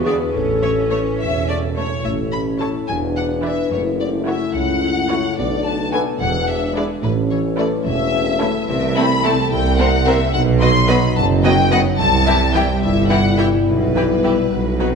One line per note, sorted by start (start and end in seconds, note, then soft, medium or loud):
0.00 0.19 E1 medium
0.00 0.20 E2 medium
0.00 0.37 E3 medium
0.00 0.32 B3 medium
0.00 0.37 D4 soft
0.05 0.13 B3 soft
0.05 1.19 E4 soft
0.05 0.19 G#4 medium
0.05 0.37 B4 soft
0.05 0.15 D5 soft
0.05 0.13 E5 soft
0.33 1.05 A1 soft
0.33 1.05 A1 medium
0.33 2.04 A2 soft
0.33 1.60 C#4 soft
0.33 1.18 A4 medium
0.62 2.07 E3 soft
0.62 0.70 A3 soft
0.62 0.71 C#5 soft
0.62 0.70 E5 soft
0.90 0.99 A3 soft
0.90 1.76 C#4 soft
0.90 0.99 C#5 soft
0.90 0.98 E5 soft
1.19 1.91 E1 soft
1.19 2.60 E4 soft
1.19 1.46 E5 medium
1.48 1.56 A3 soft
1.48 2.60 A4 soft
1.48 1.56 D5 soft
1.48 1.56 E5 soft
1.76 1.85 A3 soft
1.76 2.32 C#4 soft
1.76 2.05 C#5 soft
1.76 1.84 E5 soft
2.04 2.72 A1 medium
2.04 2.91 A2 soft
2.04 2.72 A2 medium
2.04 2.85 A3 soft
2.04 2.85 C#4 soft
2.04 2.12 E5 medium
2.32 2.91 C#4 soft
2.32 2.40 B5 medium
2.60 2.82 E3 soft
2.60 2.82 E4 soft
2.60 3.44 E4 soft
2.60 2.91 A4 soft
2.60 2.82 A4 soft
2.60 2.82 C#5 soft
2.60 2.68 A5 medium
2.88 3.56 E1 medium
2.88 3.56 E2 soft
2.88 3.75 E2 soft
2.88 3.72 B3 soft
2.88 3.72 D4 soft
2.88 2.96 G#5 medium
3.16 3.75 D4 soft
3.16 3.24 F#5 medium
3.44 3.65 E3 soft
3.44 3.65 E4 soft
3.44 4.82 E4 soft
3.44 3.65 B4 soft
3.44 3.75 B4 soft
3.44 3.65 D5 soft
3.44 3.72 E5 medium
3.72 4.39 F#1 medium
3.72 5.41 F#2 soft
3.72 4.39 F#2 medium
3.72 6.21 A3 soft
3.72 5.35 E4 soft
3.72 3.80 C#5 medium
4.00 4.54 C#3 soft
4.00 4.08 D5 medium
4.28 4.48 A3 soft
4.28 5.41 C#4 soft
4.28 4.48 E4 soft
4.28 4.48 F#4 soft
4.28 4.48 C#5 soft
4.28 4.55 E5 medium
4.55 5.22 C#2 soft
4.55 5.22 C#2 medium
4.55 5.10 C#3 soft
4.55 5.37 F#5 medium
4.84 5.41 E4 soft
5.11 5.41 C#3 soft
5.11 5.31 A3 soft
5.11 5.32 E4 medium
5.11 5.32 F#4 soft
5.11 5.31 C#5 soft
5.38 6.04 B1 medium
5.38 6.05 B1 medium
5.38 6.05 B2 medium
5.38 6.23 B2 soft
5.38 7.04 D4 medium
5.38 5.65 D5 medium
5.65 7.06 B3 soft
5.65 5.93 A5 medium
5.92 6.14 A3 medium
5.92 6.48 D4 soft
5.92 6.14 D4 medium
5.92 6.14 F#4 medium
5.92 6.23 A4 soft
5.92 6.14 B4 soft
5.92 6.00 G#5 medium
6.20 6.87 E1 medium
6.20 6.87 E2 medium
6.20 7.06 E3 soft
6.20 7.04 G#3 soft
6.20 6.48 F#5 medium
6.48 6.75 D4 soft
6.48 6.76 E5 medium
6.76 6.97 G#3 medium
6.76 6.96 D4 medium
6.76 7.06 D4 soft
6.76 6.97 E4 medium
6.76 7.06 G#4 soft
6.76 6.97 B4 medium
6.76 6.84 D5 medium
7.03 7.70 A1 medium
7.03 7.70 A2 medium
7.03 8.71 A2 medium
7.03 9.48 A3 medium
7.03 8.52 C#4 medium
7.03 7.11 B4 medium
7.30 7.86 E3 soft
7.30 7.38 C#5 medium
7.58 7.79 A3 medium
7.58 9.54 A3 soft
7.58 7.79 C#4 medium
7.58 7.79 E4 medium
7.58 7.79 A4 medium
7.58 7.66 D5 medium
7.86 8.52 E1 medium
7.86 8.52 E2 medium
7.86 8.41 E3 soft
7.86 8.67 E5 medium
8.15 8.71 C#4 soft
8.41 8.71 E3 soft
8.41 8.61 A3 medium
8.41 8.61 C#4 medium
8.41 8.61 E4 medium
8.41 8.61 A4 medium
8.68 9.37 C2 medium
8.68 9.37 C3 medium
8.68 9.50 C3 medium
8.68 10.30 C4 medium
8.68 8.96 E5 medium
8.96 9.05 A3 medium
8.96 9.23 C4 soft
8.96 9.05 C4 medium
8.96 9.04 E4 medium
8.96 9.04 A4 medium
8.96 9.24 B5 medium
9.23 9.33 A3 medium
9.23 9.78 C4 soft
9.23 9.32 C4 medium
9.23 9.31 E4 medium
9.23 9.31 A4 medium
9.23 9.54 A4 medium
9.23 9.51 A5 medium
9.51 10.20 C2 medium
9.51 10.20 C3 medium
9.51 10.36 C3 medium
9.51 10.34 A#3 medium
9.51 9.78 G5 medium
9.79 9.87 A#3 medium
9.79 10.06 C4 medium
9.79 9.87 C4 medium
9.79 9.87 A#4 medium
9.79 9.87 C5 medium
9.79 10.06 F#5 medium
10.05 10.15 A#3 medium
10.05 10.15 C4 medium
10.05 10.36 C4 medium
10.05 10.14 A#4 medium
10.05 10.14 C5 medium
10.05 10.36 C5 medium
10.05 10.33 E5 medium
10.33 11.02 B1 medium
10.33 11.02 B2 medium
10.33 12.01 B2 medium
10.33 11.95 F#3 medium
10.33 11.99 D#4 medium
10.33 10.41 F#5 medium
10.60 11.15 F#3 medium
10.60 10.70 F#3 medium
10.60 10.70 B3 medium
10.60 10.69 B4 medium
10.60 10.69 D#5 medium
10.60 10.88 C6 medium
10.88 10.97 F#3 medium
10.88 10.97 B3 medium
10.88 12.01 B3 medium
10.88 10.96 B4 medium
10.88 10.96 D#5 medium
10.88 11.16 B5 medium
11.16 11.85 F#1 medium
11.16 11.85 F#2 medium
11.16 11.70 F#3 soft
11.16 11.24 A5 loud
11.43 11.52 F#3 medium
11.43 11.52 B3 medium
11.43 12.01 F#4 medium
11.43 11.52 B4 medium
11.43 11.52 D#5 medium
11.43 11.71 G5 medium
11.71 11.79 F#3 medium
11.71 12.01 F#3 medium
11.71 11.80 B3 medium
11.71 11.80 B4 medium
11.71 11.80 D#5 medium
11.71 11.79 F#5 medium
11.99 12.68 C2 medium
11.99 13.69 C3 medium
11.99 12.68 C3 medium
11.99 14.48 G3 medium
11.99 14.48 E4 medium
11.99 12.53 A5 loud
12.27 12.35 E3 medium
12.27 12.81 C4 soft
12.27 12.35 E4 medium
12.27 12.35 G4 medium
12.27 12.35 E5 medium
12.54 12.63 E3 medium
12.54 13.94 G3 soft
12.54 12.63 E4 medium
12.54 12.63 G4 medium
12.54 12.63 E5 soft
12.54 12.82 G5 medium
12.82 13.52 G1 medium
12.82 13.53 G1 medium
12.82 13.53 G2 medium
12.82 13.37 C4 soft
12.82 13.10 E5 medium
13.10 13.18 E3 soft
13.10 13.18 E4 soft
13.10 14.22 E4 soft
13.10 13.18 G4 soft
13.10 13.18 E5 soft
13.10 13.38 F#5 medium
13.38 13.46 E3 soft
13.38 13.69 C4 soft
13.38 13.46 E4 soft
13.38 13.46 G4 soft
13.38 13.47 E5 soft
13.38 13.46 G5 medium
13.66 14.37 B1 medium
13.66 14.38 B1 medium
13.66 14.37 B2 medium
13.66 14.51 B2 soft
13.66 14.95 B4 medium
13.95 14.03 E3 soft
13.95 14.54 G3 soft
13.95 14.04 E4 soft
13.95 14.04 G4 soft
13.95 14.04 B4 soft
14.23 14.32 E3 soft
14.23 14.54 E4 soft
14.23 14.32 E4 soft
14.23 14.32 G4 soft
14.23 14.31 B4 soft
14.23 14.54 E5 soft
14.51 14.95 B1 medium
14.51 14.95 B2 medium
14.51 14.95 B2 soft
14.51 14.78 F#3 medium
14.80 14.88 F#3 soft
14.80 14.95 F#3 soft
14.80 14.95 C4 medium
14.80 14.88 D#4 soft
14.80 14.88 F#4 soft
14.80 14.88 B4 soft